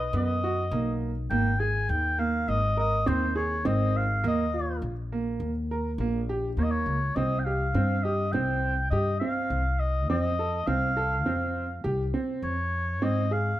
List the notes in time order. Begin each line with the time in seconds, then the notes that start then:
Already playing: B1 D#5
0.13 F#2 B3 D#5
0.44 F#4
0.71 B1 A#3
1.30 G#1 A#3 G5
1.59 G#4 G#5
1.89 D#2 G5
2.19 A#3 F5
2.48 G#1 D#5
2.77 A#4 D#5
3.06 D#2 C4 C5
3.36 G#4 C#5
3.65 G#1 C4 D#5
3.97 F5
4.24 D#2 A#3 D#5
4.54 F4
4.82 A#1
5.12 A#3
5.40 D#2
5.71 A#4
5.98 A#1 A#3
6.29 G4
6.57 D#2 A#3 C#5
6.63 D#5
6.71 C#5
6.86 C#2
7.15 C2 C4 D#5
7.39 G5
7.44 G4 F5
7.74 G2 C4
8.03 G4 D#5
8.32 C2 C4 G5
8.90 G2 G4 D#5
9.20 C4 F5
9.50 C2
9.80 D#5
10.09 F2 C4 D#5
10.39 A4
10.67 C2 C4 F5
10.97 A4
11.26 F2 C4
11.84 C2 G4
12.14 C4
12.42 F2 C#5
13.01 G#2 C4 D#5
13.31 G#4 F5